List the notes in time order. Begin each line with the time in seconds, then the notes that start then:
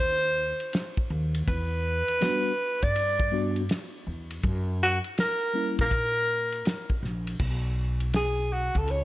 Already playing: D#2 C5
0.60 ride
0.73 snare, hi-hat pedal, ride
0.97 kick
1.10 D#2
1.35 ride
1.48 E2 B4, kick, ride
2.08 ride
2.21 G3 B3 D4 F#4, snare, hi-hat pedal, ride
2.82 G2 D5, kick, ride
2.96 ride
3.20 kick
3.32 G3 B3 D4 F#4
3.56 ride
3.69 snare, hi-hat pedal, ride
4.07 E2
4.31 ride
4.43 F#2, kick, ride
4.83 F#4
5.04 ride
5.18 A#4, snare, hi-hat pedal, ride
5.54 G3 A#3 C#4 E4
5.79 A#2 A#4, kick, ride
5.91 kick, ride
6.52 ride
6.65 snare, hi-hat pedal, ride
6.90 kick
7.03 A#1, snare
7.27 ride
7.39 B1, kick, crash
8.00 ride
8.14 G#4, snare, hi-hat pedal, ride
8.53 F#4
8.75 C#2 A4, kick, ride
8.88 C#5, ride